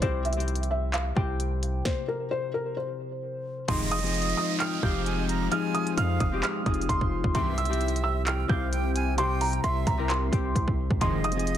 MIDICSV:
0, 0, Header, 1, 9, 480
1, 0, Start_track
1, 0, Key_signature, -4, "minor"
1, 0, Tempo, 458015
1, 22, Time_signature, 4, 2, 24, 8
1, 12133, End_track
2, 0, Start_track
2, 0, Title_t, "Felt piano"
2, 0, Program_c, 0, 0
2, 23, Note_on_c, 0, 72, 101
2, 234, Note_off_c, 0, 72, 0
2, 261, Note_on_c, 0, 76, 73
2, 713, Note_off_c, 0, 76, 0
2, 741, Note_on_c, 0, 76, 81
2, 953, Note_off_c, 0, 76, 0
2, 982, Note_on_c, 0, 77, 72
2, 1193, Note_off_c, 0, 77, 0
2, 1221, Note_on_c, 0, 79, 80
2, 1899, Note_off_c, 0, 79, 0
2, 1941, Note_on_c, 0, 72, 91
2, 2153, Note_off_c, 0, 72, 0
2, 2182, Note_on_c, 0, 70, 76
2, 2394, Note_off_c, 0, 70, 0
2, 2421, Note_on_c, 0, 72, 93
2, 2633, Note_off_c, 0, 72, 0
2, 2662, Note_on_c, 0, 70, 82
2, 2874, Note_off_c, 0, 70, 0
2, 2901, Note_on_c, 0, 72, 80
2, 3820, Note_off_c, 0, 72, 0
2, 3863, Note_on_c, 0, 84, 92
2, 4074, Note_off_c, 0, 84, 0
2, 4103, Note_on_c, 0, 87, 98
2, 4554, Note_off_c, 0, 87, 0
2, 4583, Note_on_c, 0, 87, 76
2, 4794, Note_off_c, 0, 87, 0
2, 4822, Note_on_c, 0, 89, 96
2, 5033, Note_off_c, 0, 89, 0
2, 5062, Note_on_c, 0, 91, 76
2, 5740, Note_off_c, 0, 91, 0
2, 5782, Note_on_c, 0, 89, 83
2, 5994, Note_off_c, 0, 89, 0
2, 6021, Note_on_c, 0, 87, 90
2, 6233, Note_off_c, 0, 87, 0
2, 6261, Note_on_c, 0, 89, 91
2, 6473, Note_off_c, 0, 89, 0
2, 6503, Note_on_c, 0, 87, 81
2, 6714, Note_off_c, 0, 87, 0
2, 6742, Note_on_c, 0, 89, 83
2, 6953, Note_off_c, 0, 89, 0
2, 6983, Note_on_c, 0, 87, 80
2, 7194, Note_off_c, 0, 87, 0
2, 7222, Note_on_c, 0, 84, 99
2, 7673, Note_off_c, 0, 84, 0
2, 7702, Note_on_c, 0, 84, 107
2, 7914, Note_off_c, 0, 84, 0
2, 7942, Note_on_c, 0, 88, 77
2, 8393, Note_off_c, 0, 88, 0
2, 8422, Note_on_c, 0, 88, 82
2, 8633, Note_off_c, 0, 88, 0
2, 8663, Note_on_c, 0, 89, 76
2, 8874, Note_off_c, 0, 89, 0
2, 8902, Note_on_c, 0, 91, 80
2, 9580, Note_off_c, 0, 91, 0
2, 9622, Note_on_c, 0, 84, 94
2, 9833, Note_off_c, 0, 84, 0
2, 9862, Note_on_c, 0, 82, 77
2, 10074, Note_off_c, 0, 82, 0
2, 10102, Note_on_c, 0, 84, 97
2, 10314, Note_off_c, 0, 84, 0
2, 10342, Note_on_c, 0, 82, 83
2, 10554, Note_off_c, 0, 82, 0
2, 10582, Note_on_c, 0, 84, 82
2, 11500, Note_off_c, 0, 84, 0
2, 11543, Note_on_c, 0, 84, 91
2, 11754, Note_off_c, 0, 84, 0
2, 11783, Note_on_c, 0, 87, 95
2, 12133, Note_off_c, 0, 87, 0
2, 12133, End_track
3, 0, Start_track
3, 0, Title_t, "Flute"
3, 0, Program_c, 1, 73
3, 3862, Note_on_c, 1, 75, 103
3, 4780, Note_off_c, 1, 75, 0
3, 4822, Note_on_c, 1, 79, 89
3, 5050, Note_off_c, 1, 79, 0
3, 5060, Note_on_c, 1, 77, 78
3, 5289, Note_off_c, 1, 77, 0
3, 5298, Note_on_c, 1, 80, 86
3, 5528, Note_off_c, 1, 80, 0
3, 5539, Note_on_c, 1, 82, 76
3, 5768, Note_off_c, 1, 82, 0
3, 5785, Note_on_c, 1, 80, 102
3, 6235, Note_off_c, 1, 80, 0
3, 6263, Note_on_c, 1, 77, 90
3, 6713, Note_off_c, 1, 77, 0
3, 7701, Note_on_c, 1, 76, 113
3, 8619, Note_off_c, 1, 76, 0
3, 8662, Note_on_c, 1, 79, 85
3, 8890, Note_off_c, 1, 79, 0
3, 8901, Note_on_c, 1, 77, 88
3, 9129, Note_off_c, 1, 77, 0
3, 9138, Note_on_c, 1, 79, 97
3, 9368, Note_off_c, 1, 79, 0
3, 9380, Note_on_c, 1, 80, 83
3, 9609, Note_off_c, 1, 80, 0
3, 9626, Note_on_c, 1, 79, 109
3, 10075, Note_off_c, 1, 79, 0
3, 10098, Note_on_c, 1, 76, 86
3, 10551, Note_off_c, 1, 76, 0
3, 11542, Note_on_c, 1, 75, 103
3, 12133, Note_off_c, 1, 75, 0
3, 12133, End_track
4, 0, Start_track
4, 0, Title_t, "Harp"
4, 0, Program_c, 2, 46
4, 15, Note_on_c, 2, 48, 99
4, 21, Note_on_c, 2, 60, 92
4, 27, Note_on_c, 2, 64, 91
4, 33, Note_on_c, 2, 67, 101
4, 313, Note_off_c, 2, 60, 0
4, 316, Note_off_c, 2, 64, 0
4, 319, Note_off_c, 2, 67, 0
4, 369, Note_off_c, 2, 48, 0
4, 382, Note_on_c, 2, 48, 68
4, 388, Note_on_c, 2, 60, 69
4, 394, Note_on_c, 2, 64, 67
4, 400, Note_on_c, 2, 67, 77
4, 1194, Note_off_c, 2, 48, 0
4, 1206, Note_on_c, 2, 48, 84
4, 1208, Note_off_c, 2, 60, 0
4, 1212, Note_on_c, 2, 60, 69
4, 1215, Note_off_c, 2, 64, 0
4, 1219, Note_on_c, 2, 64, 74
4, 1221, Note_off_c, 2, 67, 0
4, 1225, Note_on_c, 2, 67, 83
4, 3692, Note_off_c, 2, 67, 0
4, 3854, Note_on_c, 2, 53, 102
4, 3856, Note_off_c, 2, 60, 0
4, 3860, Note_on_c, 2, 60, 95
4, 3866, Note_on_c, 2, 63, 92
4, 3872, Note_on_c, 2, 68, 100
4, 3914, Note_off_c, 2, 48, 0
4, 3917, Note_off_c, 2, 64, 0
4, 4153, Note_off_c, 2, 60, 0
4, 4156, Note_off_c, 2, 63, 0
4, 4159, Note_off_c, 2, 68, 0
4, 4206, Note_off_c, 2, 53, 0
4, 4218, Note_on_c, 2, 53, 72
4, 4225, Note_on_c, 2, 60, 64
4, 4231, Note_on_c, 2, 63, 63
4, 4237, Note_on_c, 2, 68, 77
4, 5043, Note_off_c, 2, 53, 0
4, 5056, Note_on_c, 2, 53, 82
4, 5058, Note_off_c, 2, 60, 0
4, 5062, Note_on_c, 2, 60, 75
4, 5064, Note_off_c, 2, 63, 0
4, 5068, Note_on_c, 2, 63, 78
4, 5074, Note_on_c, 2, 67, 91
4, 5137, Note_off_c, 2, 68, 0
4, 5761, Note_off_c, 2, 53, 0
4, 5773, Note_on_c, 2, 53, 100
4, 5775, Note_off_c, 2, 60, 0
4, 5779, Note_on_c, 2, 60, 91
4, 5781, Note_off_c, 2, 63, 0
4, 5785, Note_on_c, 2, 63, 92
4, 5791, Note_on_c, 2, 68, 104
4, 5854, Note_off_c, 2, 67, 0
4, 6608, Note_off_c, 2, 53, 0
4, 6621, Note_on_c, 2, 53, 77
4, 6623, Note_off_c, 2, 60, 0
4, 6627, Note_on_c, 2, 60, 70
4, 6629, Note_off_c, 2, 63, 0
4, 6633, Note_on_c, 2, 63, 70
4, 6639, Note_on_c, 2, 67, 94
4, 6702, Note_off_c, 2, 68, 0
4, 6914, Note_off_c, 2, 60, 0
4, 6917, Note_off_c, 2, 63, 0
4, 6920, Note_off_c, 2, 67, 0
4, 6964, Note_off_c, 2, 53, 0
4, 6976, Note_on_c, 2, 53, 74
4, 6983, Note_on_c, 2, 60, 68
4, 6989, Note_on_c, 2, 63, 65
4, 6995, Note_on_c, 2, 68, 87
4, 7695, Note_on_c, 2, 48, 101
4, 7697, Note_off_c, 2, 60, 0
4, 7701, Note_on_c, 2, 60, 93
4, 7708, Note_on_c, 2, 64, 93
4, 7714, Note_on_c, 2, 67, 109
4, 7754, Note_off_c, 2, 53, 0
4, 7771, Note_off_c, 2, 63, 0
4, 7777, Note_off_c, 2, 68, 0
4, 7994, Note_off_c, 2, 60, 0
4, 7997, Note_off_c, 2, 64, 0
4, 8000, Note_off_c, 2, 67, 0
4, 8050, Note_off_c, 2, 48, 0
4, 8062, Note_on_c, 2, 48, 71
4, 8068, Note_on_c, 2, 60, 69
4, 8075, Note_on_c, 2, 64, 71
4, 8081, Note_on_c, 2, 67, 78
4, 8874, Note_off_c, 2, 48, 0
4, 8886, Note_on_c, 2, 48, 83
4, 8889, Note_off_c, 2, 60, 0
4, 8893, Note_on_c, 2, 60, 73
4, 8894, Note_off_c, 2, 64, 0
4, 8899, Note_on_c, 2, 64, 75
4, 8901, Note_off_c, 2, 67, 0
4, 8905, Note_on_c, 2, 67, 83
4, 9603, Note_off_c, 2, 48, 0
4, 9616, Note_on_c, 2, 48, 99
4, 9618, Note_off_c, 2, 60, 0
4, 9622, Note_on_c, 2, 60, 87
4, 9624, Note_off_c, 2, 64, 0
4, 9628, Note_on_c, 2, 64, 88
4, 9630, Note_off_c, 2, 67, 0
4, 9634, Note_on_c, 2, 67, 109
4, 10441, Note_off_c, 2, 48, 0
4, 10454, Note_on_c, 2, 48, 78
4, 10456, Note_off_c, 2, 60, 0
4, 10460, Note_on_c, 2, 60, 73
4, 10462, Note_off_c, 2, 64, 0
4, 10466, Note_on_c, 2, 64, 71
4, 10472, Note_on_c, 2, 70, 90
4, 10750, Note_off_c, 2, 60, 0
4, 10754, Note_off_c, 2, 64, 0
4, 10757, Note_off_c, 2, 70, 0
4, 10796, Note_off_c, 2, 48, 0
4, 10808, Note_on_c, 2, 48, 73
4, 10814, Note_on_c, 2, 60, 67
4, 10821, Note_on_c, 2, 64, 63
4, 10823, Note_off_c, 2, 67, 0
4, 10827, Note_on_c, 2, 67, 78
4, 11534, Note_on_c, 2, 53, 101
4, 11536, Note_off_c, 2, 60, 0
4, 11540, Note_on_c, 2, 60, 92
4, 11546, Note_on_c, 2, 63, 91
4, 11552, Note_on_c, 2, 68, 106
4, 11594, Note_off_c, 2, 48, 0
4, 11597, Note_off_c, 2, 64, 0
4, 11615, Note_off_c, 2, 67, 0
4, 11833, Note_off_c, 2, 60, 0
4, 11836, Note_off_c, 2, 63, 0
4, 11839, Note_off_c, 2, 68, 0
4, 11886, Note_off_c, 2, 53, 0
4, 11898, Note_on_c, 2, 53, 71
4, 11904, Note_on_c, 2, 60, 68
4, 11911, Note_on_c, 2, 63, 66
4, 11917, Note_on_c, 2, 68, 77
4, 12133, Note_off_c, 2, 53, 0
4, 12133, Note_off_c, 2, 60, 0
4, 12133, Note_off_c, 2, 63, 0
4, 12133, Note_off_c, 2, 68, 0
4, 12133, End_track
5, 0, Start_track
5, 0, Title_t, "Analog synth pad"
5, 0, Program_c, 3, 89
5, 3862, Note_on_c, 3, 53, 81
5, 3862, Note_on_c, 3, 56, 89
5, 3862, Note_on_c, 3, 60, 74
5, 3862, Note_on_c, 3, 63, 76
5, 5763, Note_off_c, 3, 63, 0
5, 5781, Note_on_c, 3, 65, 74
5, 7663, Note_off_c, 3, 53, 0
5, 7664, Note_off_c, 3, 56, 0
5, 7682, Note_off_c, 3, 65, 0
5, 7701, Note_on_c, 3, 48, 84
5, 7701, Note_on_c, 3, 64, 75
5, 7701, Note_on_c, 3, 67, 92
5, 11503, Note_off_c, 3, 48, 0
5, 11503, Note_off_c, 3, 64, 0
5, 11503, Note_off_c, 3, 67, 0
5, 11542, Note_on_c, 3, 53, 84
5, 11542, Note_on_c, 3, 56, 92
5, 11542, Note_on_c, 3, 63, 75
5, 12133, Note_off_c, 3, 53, 0
5, 12133, Note_off_c, 3, 56, 0
5, 12133, Note_off_c, 3, 60, 0
5, 12133, Note_off_c, 3, 63, 0
5, 12133, End_track
6, 0, Start_track
6, 0, Title_t, "Analog polysynth"
6, 0, Program_c, 4, 90
6, 3862, Note_on_c, 4, 44, 103
6, 3862, Note_on_c, 4, 48, 105
6, 3862, Note_on_c, 4, 51, 103
6, 4066, Note_off_c, 4, 44, 0
6, 4066, Note_off_c, 4, 48, 0
6, 4066, Note_off_c, 4, 51, 0
6, 7702, Note_on_c, 4, 43, 99
6, 7702, Note_on_c, 4, 48, 103
6, 7702, Note_on_c, 4, 52, 111
6, 7906, Note_off_c, 4, 43, 0
6, 7906, Note_off_c, 4, 48, 0
6, 7906, Note_off_c, 4, 52, 0
6, 11542, Note_on_c, 4, 44, 103
6, 11542, Note_on_c, 4, 48, 104
6, 11542, Note_on_c, 4, 51, 107
6, 11746, Note_off_c, 4, 44, 0
6, 11746, Note_off_c, 4, 48, 0
6, 11746, Note_off_c, 4, 51, 0
6, 12133, End_track
7, 0, Start_track
7, 0, Title_t, "808-style bass"
7, 0, Program_c, 5, 38
7, 22, Note_on_c, 5, 36, 112
7, 1180, Note_off_c, 5, 36, 0
7, 1222, Note_on_c, 5, 36, 101
7, 1913, Note_off_c, 5, 36, 0
7, 3862, Note_on_c, 5, 29, 114
7, 4553, Note_off_c, 5, 29, 0
7, 5062, Note_on_c, 5, 29, 102
7, 5753, Note_off_c, 5, 29, 0
7, 6261, Note_on_c, 5, 41, 113
7, 6492, Note_off_c, 5, 41, 0
7, 6502, Note_on_c, 5, 29, 108
7, 6732, Note_off_c, 5, 29, 0
7, 6982, Note_on_c, 5, 29, 106
7, 7212, Note_off_c, 5, 29, 0
7, 7222, Note_on_c, 5, 29, 110
7, 7344, Note_off_c, 5, 29, 0
7, 7349, Note_on_c, 5, 29, 104
7, 7579, Note_off_c, 5, 29, 0
7, 7589, Note_on_c, 5, 29, 105
7, 7697, Note_off_c, 5, 29, 0
7, 7702, Note_on_c, 5, 36, 116
7, 8860, Note_off_c, 5, 36, 0
7, 8902, Note_on_c, 5, 36, 106
7, 10060, Note_off_c, 5, 36, 0
7, 10102, Note_on_c, 5, 36, 113
7, 10332, Note_off_c, 5, 36, 0
7, 10342, Note_on_c, 5, 36, 105
7, 10802, Note_off_c, 5, 36, 0
7, 10822, Note_on_c, 5, 36, 101
7, 11052, Note_off_c, 5, 36, 0
7, 11062, Note_on_c, 5, 36, 111
7, 11184, Note_off_c, 5, 36, 0
7, 11189, Note_on_c, 5, 36, 104
7, 11419, Note_off_c, 5, 36, 0
7, 11429, Note_on_c, 5, 36, 106
7, 11537, Note_off_c, 5, 36, 0
7, 11542, Note_on_c, 5, 29, 114
7, 12133, Note_off_c, 5, 29, 0
7, 12133, End_track
8, 0, Start_track
8, 0, Title_t, "Downlifter"
8, 0, Program_c, 6, 103
8, 3862, Note_on_c, 6, 60, 90
8, 7702, Note_off_c, 6, 60, 0
8, 12133, End_track
9, 0, Start_track
9, 0, Title_t, "Drums"
9, 21, Note_on_c, 9, 42, 85
9, 22, Note_on_c, 9, 36, 122
9, 126, Note_off_c, 9, 36, 0
9, 126, Note_off_c, 9, 42, 0
9, 262, Note_on_c, 9, 42, 65
9, 342, Note_off_c, 9, 42, 0
9, 342, Note_on_c, 9, 42, 67
9, 422, Note_off_c, 9, 42, 0
9, 422, Note_on_c, 9, 42, 68
9, 502, Note_off_c, 9, 42, 0
9, 502, Note_on_c, 9, 42, 64
9, 582, Note_off_c, 9, 42, 0
9, 582, Note_on_c, 9, 42, 66
9, 662, Note_off_c, 9, 42, 0
9, 662, Note_on_c, 9, 42, 65
9, 766, Note_off_c, 9, 42, 0
9, 981, Note_on_c, 9, 39, 119
9, 984, Note_on_c, 9, 42, 86
9, 1086, Note_off_c, 9, 39, 0
9, 1088, Note_off_c, 9, 42, 0
9, 1222, Note_on_c, 9, 36, 106
9, 1326, Note_off_c, 9, 36, 0
9, 1465, Note_on_c, 9, 42, 78
9, 1570, Note_off_c, 9, 42, 0
9, 1706, Note_on_c, 9, 42, 89
9, 1811, Note_off_c, 9, 42, 0
9, 1942, Note_on_c, 9, 36, 113
9, 1942, Note_on_c, 9, 38, 94
9, 2046, Note_off_c, 9, 36, 0
9, 2046, Note_off_c, 9, 38, 0
9, 3861, Note_on_c, 9, 42, 84
9, 3862, Note_on_c, 9, 36, 121
9, 3862, Note_on_c, 9, 49, 107
9, 3966, Note_off_c, 9, 36, 0
9, 3966, Note_off_c, 9, 42, 0
9, 3966, Note_off_c, 9, 49, 0
9, 4102, Note_on_c, 9, 42, 69
9, 4182, Note_off_c, 9, 42, 0
9, 4182, Note_on_c, 9, 42, 68
9, 4261, Note_off_c, 9, 42, 0
9, 4261, Note_on_c, 9, 42, 70
9, 4342, Note_off_c, 9, 42, 0
9, 4342, Note_on_c, 9, 42, 62
9, 4422, Note_off_c, 9, 42, 0
9, 4422, Note_on_c, 9, 42, 65
9, 4502, Note_off_c, 9, 42, 0
9, 4502, Note_on_c, 9, 42, 68
9, 4607, Note_off_c, 9, 42, 0
9, 4822, Note_on_c, 9, 39, 123
9, 4824, Note_on_c, 9, 42, 90
9, 4927, Note_off_c, 9, 39, 0
9, 4929, Note_off_c, 9, 42, 0
9, 5062, Note_on_c, 9, 36, 110
9, 5167, Note_off_c, 9, 36, 0
9, 5306, Note_on_c, 9, 42, 76
9, 5410, Note_off_c, 9, 42, 0
9, 5546, Note_on_c, 9, 42, 88
9, 5651, Note_off_c, 9, 42, 0
9, 5781, Note_on_c, 9, 42, 86
9, 5886, Note_off_c, 9, 42, 0
9, 6022, Note_on_c, 9, 42, 67
9, 6127, Note_off_c, 9, 42, 0
9, 6149, Note_on_c, 9, 42, 69
9, 6254, Note_off_c, 9, 42, 0
9, 6262, Note_on_c, 9, 42, 84
9, 6367, Note_off_c, 9, 42, 0
9, 6502, Note_on_c, 9, 36, 107
9, 6502, Note_on_c, 9, 42, 80
9, 6606, Note_off_c, 9, 42, 0
9, 6607, Note_off_c, 9, 36, 0
9, 6742, Note_on_c, 9, 39, 124
9, 6744, Note_on_c, 9, 42, 91
9, 6846, Note_off_c, 9, 39, 0
9, 6849, Note_off_c, 9, 42, 0
9, 6982, Note_on_c, 9, 36, 106
9, 6982, Note_on_c, 9, 42, 39
9, 7062, Note_off_c, 9, 42, 0
9, 7062, Note_on_c, 9, 42, 54
9, 7087, Note_off_c, 9, 36, 0
9, 7142, Note_off_c, 9, 42, 0
9, 7142, Note_on_c, 9, 42, 64
9, 7222, Note_on_c, 9, 36, 86
9, 7225, Note_off_c, 9, 42, 0
9, 7225, Note_on_c, 9, 42, 81
9, 7327, Note_off_c, 9, 36, 0
9, 7330, Note_off_c, 9, 42, 0
9, 7349, Note_on_c, 9, 36, 89
9, 7454, Note_off_c, 9, 36, 0
9, 7589, Note_on_c, 9, 36, 95
9, 7694, Note_off_c, 9, 36, 0
9, 7700, Note_on_c, 9, 42, 85
9, 7702, Note_on_c, 9, 36, 125
9, 7805, Note_off_c, 9, 42, 0
9, 7807, Note_off_c, 9, 36, 0
9, 7941, Note_on_c, 9, 42, 67
9, 8022, Note_off_c, 9, 42, 0
9, 8022, Note_on_c, 9, 42, 67
9, 8102, Note_off_c, 9, 42, 0
9, 8102, Note_on_c, 9, 42, 69
9, 8182, Note_off_c, 9, 42, 0
9, 8182, Note_on_c, 9, 42, 64
9, 8262, Note_off_c, 9, 42, 0
9, 8262, Note_on_c, 9, 42, 65
9, 8342, Note_off_c, 9, 42, 0
9, 8342, Note_on_c, 9, 42, 65
9, 8447, Note_off_c, 9, 42, 0
9, 8662, Note_on_c, 9, 39, 123
9, 8664, Note_on_c, 9, 42, 89
9, 8767, Note_off_c, 9, 39, 0
9, 8769, Note_off_c, 9, 42, 0
9, 8902, Note_on_c, 9, 36, 109
9, 9007, Note_off_c, 9, 36, 0
9, 9145, Note_on_c, 9, 42, 79
9, 9250, Note_off_c, 9, 42, 0
9, 9386, Note_on_c, 9, 42, 91
9, 9491, Note_off_c, 9, 42, 0
9, 9621, Note_on_c, 9, 42, 84
9, 9725, Note_off_c, 9, 42, 0
9, 9862, Note_on_c, 9, 42, 80
9, 9865, Note_on_c, 9, 46, 87
9, 9966, Note_off_c, 9, 42, 0
9, 9970, Note_off_c, 9, 46, 0
9, 9989, Note_on_c, 9, 42, 52
9, 10094, Note_off_c, 9, 42, 0
9, 10101, Note_on_c, 9, 37, 72
9, 10102, Note_on_c, 9, 42, 87
9, 10206, Note_off_c, 9, 37, 0
9, 10207, Note_off_c, 9, 42, 0
9, 10342, Note_on_c, 9, 36, 105
9, 10342, Note_on_c, 9, 42, 80
9, 10446, Note_off_c, 9, 42, 0
9, 10447, Note_off_c, 9, 36, 0
9, 10581, Note_on_c, 9, 39, 126
9, 10584, Note_on_c, 9, 42, 89
9, 10686, Note_off_c, 9, 39, 0
9, 10688, Note_off_c, 9, 42, 0
9, 10822, Note_on_c, 9, 36, 109
9, 10824, Note_on_c, 9, 42, 64
9, 10927, Note_off_c, 9, 36, 0
9, 10929, Note_off_c, 9, 42, 0
9, 11062, Note_on_c, 9, 36, 87
9, 11065, Note_on_c, 9, 42, 78
9, 11167, Note_off_c, 9, 36, 0
9, 11170, Note_off_c, 9, 42, 0
9, 11189, Note_on_c, 9, 36, 85
9, 11294, Note_off_c, 9, 36, 0
9, 11429, Note_on_c, 9, 36, 96
9, 11534, Note_off_c, 9, 36, 0
9, 11540, Note_on_c, 9, 42, 85
9, 11542, Note_on_c, 9, 36, 122
9, 11645, Note_off_c, 9, 42, 0
9, 11646, Note_off_c, 9, 36, 0
9, 11782, Note_on_c, 9, 42, 68
9, 11861, Note_off_c, 9, 42, 0
9, 11861, Note_on_c, 9, 42, 68
9, 11941, Note_off_c, 9, 42, 0
9, 11941, Note_on_c, 9, 42, 70
9, 12021, Note_off_c, 9, 42, 0
9, 12021, Note_on_c, 9, 42, 67
9, 12126, Note_off_c, 9, 42, 0
9, 12133, End_track
0, 0, End_of_file